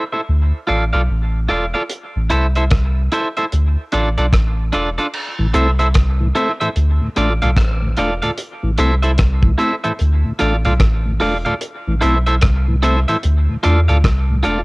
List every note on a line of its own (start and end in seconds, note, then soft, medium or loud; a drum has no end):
0.12 0.20 E4 medium
0.12 0.20 A4 soft
0.12 0.20 C5 medium
0.12 0.20 E5 medium
0.29 0.52 D2 loud
0.67 0.93 A1 medium
0.67 0.83 F4 medium
0.67 0.83 A4 medium
0.67 0.83 D5 medium
0.67 0.84 F5 medium
0.93 1.09 B1 medium
0.93 1.01 F4 soft
0.93 1.01 A4 medium
0.93 1.01 D5 medium
0.93 1.00 F5 medium
1.10 1.48 A1 medium
1.49 1.74 E1 medium
1.49 1.64 F4 medium
1.49 1.65 A4 medium
1.49 1.65 D5 medium
1.49 1.65 F5 medium
1.74 1.82 F4 soft
1.74 1.82 A4 medium
1.74 1.82 D5 medium
1.74 1.82 F5 medium
1.90 closed hi-hat medium
2.16 2.30 A1 loud
2.30 3.09 C2 medium
2.30 2.45 E4 medium
2.30 2.46 A4 medium
2.30 2.46 C5 medium
2.30 2.46 E5 medium
2.30 closed hi-hat medium
2.55 2.64 E4 soft
2.55 2.63 A4 soft
2.55 2.63 C5 medium
2.55 2.63 E5 medium
2.55 closed hi-hat soft
2.71 kick loud
2.71 cross-stick loud
2.71 closed hi-hat medium
3.12 3.27 E4 medium
3.12 3.27 A4 medium
3.12 3.27 C5 medium
3.12 3.27 E5 medium
3.12 closed hi-hat medium
3.37 3.45 E4 soft
3.37 3.45 A4 medium
3.37 3.44 C5 medium
3.37 3.44 E5 medium
3.37 closed hi-hat soft
3.52 3.76 D2 medium
3.52 closed hi-hat medium
3.92 4.17 A1 medium
3.92 4.08 D4 medium
3.92 4.08 F4 medium
3.92 4.08 A4 medium
3.92 4.08 D5 medium
3.92 closed hi-hat medium
4.18 4.33 B1 medium
4.18 4.25 D4 soft
4.18 4.25 F4 medium
4.18 4.25 A4 medium
4.18 4.25 D5 medium
4.18 closed hi-hat soft
4.33 4.72 A1 medium
4.33 kick loud
4.33 cross-stick loud
4.33 closed hi-hat medium
4.73 4.98 E1 medium
4.73 4.88 D4 medium
4.73 4.89 F4 medium
4.73 4.89 A4 medium
4.73 4.89 D5 medium
4.73 closed hi-hat medium
4.98 5.06 D4 medium
4.98 5.06 F4 medium
4.98 5.06 A4 medium
4.98 5.06 D5 medium
4.98 closed hi-hat soft
5.14 crash medium
5.39 5.54 A1 loud
5.39 5.47 A2 medium
5.39 5.47 E3 medium
5.54 6.32 C2 medium
5.54 5.67 A3 medium
5.54 5.68 C4 medium
5.54 5.69 E4 medium
5.54 5.68 E4 medium
5.54 5.69 A4 medium
5.54 5.70 C5 medium
5.54 5.70 E5 medium
5.54 closed hi-hat medium
5.79 5.87 E4 soft
5.79 5.87 A4 medium
5.79 5.87 C5 medium
5.79 5.87 E5 medium
5.79 closed hi-hat medium
5.94 kick loud
5.94 cross-stick loud
5.94 closed hi-hat loud
6.20 6.28 A2 medium
6.20 6.28 E3 medium
6.35 6.49 A3 medium
6.35 6.49 C4 medium
6.35 6.50 E4 medium
6.35 6.49 E4 medium
6.35 6.50 A4 medium
6.35 6.51 C5 medium
6.35 6.51 E5 medium
6.35 closed hi-hat medium
6.60 6.69 A2 medium
6.60 6.69 E3 medium
6.60 6.69 E4 soft
6.60 6.68 A4 medium
6.60 6.68 C5 medium
6.60 6.68 E5 medium
6.60 closed hi-hat soft
6.76 7.00 D2 loud
6.76 closed hi-hat medium
7.01 7.09 D2 medium
7.01 7.09 A2 medium
7.16 7.40 A1 medium
7.16 7.29 A3 medium
7.16 7.29 D4 medium
7.16 7.30 F4 medium
7.16 7.32 F4 medium
7.16 7.32 A4 medium
7.16 7.32 D5 loud
7.16 7.32 F5 medium
7.16 closed hi-hat medium
7.42 7.56 B1 medium
7.42 7.50 D2 medium
7.42 7.50 A2 medium
7.42 7.50 F4 soft
7.42 7.50 A4 medium
7.42 7.49 D5 medium
7.42 7.49 F5 medium
7.42 closed hi-hat soft
7.56 7.96 A1 medium
7.56 kick loud
7.56 cross-stick loud
7.56 closed hi-hat medium
7.82 7.90 D2 medium
7.82 7.90 A2 medium
7.97 8.22 E1 medium
7.97 8.11 A3 medium
7.97 8.11 D4 medium
7.97 8.12 F4 medium
7.97 8.11 F4 medium
7.97 8.13 A4 medium
7.97 8.13 D5 medium
7.97 8.13 F5 medium
7.97 closed hi-hat medium
8.22 8.31 D2 medium
8.22 8.31 A2 medium
8.22 8.30 F4 medium
8.22 8.30 A4 soft
8.22 8.30 D5 medium
8.22 8.30 F5 medium
8.22 closed hi-hat soft
8.38 closed hi-hat medium
8.63 8.78 A1 loud
8.63 8.71 A2 medium
8.63 8.71 E3 medium
8.78 9.56 C2 medium
8.78 8.92 A3 medium
8.78 8.92 C4 medium
8.78 8.93 E4 medium
8.78 8.92 E4 medium
8.78 8.94 A4 medium
8.78 8.94 C5 medium
8.78 8.94 E5 medium
8.78 closed hi-hat medium
9.03 9.11 E4 medium
9.03 9.11 A4 medium
9.03 9.11 C5 medium
9.03 9.10 E5 medium
9.03 closed hi-hat medium
9.18 kick loud
9.18 cross-stick loud
9.18 closed hi-hat medium
9.43 9.52 A2 medium
9.43 9.52 E3 medium
9.43 kick medium
9.58 9.72 A3 medium
9.58 9.73 C4 medium
9.58 9.74 E4 medium
9.58 9.73 E4 medium
9.58 9.74 A4 loud
9.58 9.74 C5 medium
9.58 9.75 E5 loud
9.58 closed hi-hat medium
9.84 9.93 A2 medium
9.84 9.93 E3 medium
9.84 9.92 E4 medium
9.84 9.92 A4 medium
9.84 9.92 C5 medium
9.84 9.91 E5 medium
9.84 closed hi-hat soft
9.99 10.24 D2 loud
9.99 closed hi-hat medium
10.25 10.33 D2 medium
10.25 10.33 A2 medium
10.39 10.65 A1 medium
10.39 10.53 A3 medium
10.39 10.54 D4 medium
10.39 10.55 F4 medium
10.39 10.54 F4 medium
10.39 10.55 A4 medium
10.39 10.55 D5 medium
10.39 10.56 F5 medium
10.39 closed hi-hat medium
10.65 10.80 B1 medium
10.65 10.73 D2 medium
10.65 10.73 A2 medium
10.65 10.73 F4 medium
10.65 10.73 A4 medium
10.65 10.73 D5 medium
10.65 10.73 F5 medium
10.65 closed hi-hat soft
10.80 11.19 A1 medium
10.80 kick loud
10.80 cross-stick loud
10.80 closed hi-hat medium
11.06 11.14 D2 medium
11.06 11.14 A2 medium
11.20 11.46 E1 medium
11.20 11.34 A3 medium
11.20 11.35 D4 medium
11.20 11.36 F4 medium
11.20 11.35 F4 medium
11.20 11.36 A4 medium
11.20 11.36 D5 medium
11.20 11.37 F5 medium
11.20 open hi-hat soft
11.45 11.54 D2 medium
11.45 11.54 A2 medium
11.45 11.54 F4 medium
11.45 11.54 A4 medium
11.45 11.53 D5 medium
11.45 11.53 F5 medium
11.45 closed hi-hat soft
11.61 closed hi-hat medium
11.87 12.02 A1 medium
11.87 11.95 A2 medium
11.87 11.95 E3 medium
12.01 12.41 B1 medium
12.01 12.16 A3 medium
12.01 12.16 C4 medium
12.01 12.17 E4 medium
12.01 12.16 E4 medium
12.01 12.17 A4 medium
12.01 12.17 C5 medium
12.01 12.17 E5 medium
12.01 closed hi-hat medium
12.26 12.35 E4 soft
12.26 12.35 A4 medium
12.26 12.34 C5 medium
12.26 12.34 E5 medium
12.26 closed hi-hat soft
12.41 13.05 C2 medium
12.41 kick loud
12.41 cross-stick loud
12.41 closed hi-hat loud
12.68 12.76 A2 medium
12.68 12.76 E3 medium
12.82 12.96 A3 medium
12.82 12.96 C4 medium
12.82 12.98 E4 medium
12.82 12.96 E4 medium
12.82 12.98 A4 loud
12.82 12.98 C5 medium
12.82 12.99 E5 loud
12.82 closed hi-hat medium
13.08 13.16 A2 medium
13.08 13.16 E3 medium
13.08 13.16 E4 medium
13.08 13.16 A4 medium
13.08 13.16 C5 medium
13.08 13.15 E5 medium
13.08 closed hi-hat soft
13.23 13.48 D2 loud
13.23 closed hi-hat medium
13.49 13.57 D2 medium
13.49 13.57 A2 medium
13.63 13.88 E2 medium
13.63 13.77 A3 medium
13.63 13.78 D4 medium
13.63 13.79 F4 medium
13.63 13.78 F4 medium
13.63 13.79 A4 medium
13.63 13.79 D5 medium
13.63 13.79 F5 medium
13.63 closed hi-hat medium
13.88 14.04 D2 medium
13.88 13.98 D2 medium
13.88 13.98 A2 medium
13.88 13.97 F4 medium
13.88 13.96 A4 medium
13.88 13.96 D5 medium
13.88 13.96 F5 medium
13.88 closed hi-hat soft
14.04 14.43 C2 medium
14.04 kick loud
14.04 cross-stick loud
14.04 closed hi-hat medium
14.30 14.38 D2 medium
14.30 14.38 A2 medium
14.43 14.64 E1 loud
14.43 14.58 A3 medium
14.43 14.59 D4 medium
14.43 14.59 F4 medium
14.43 14.59 A4 medium
14.43 14.60 D5 medium
14.43 14.60 F5 medium
14.43 closed hi-hat medium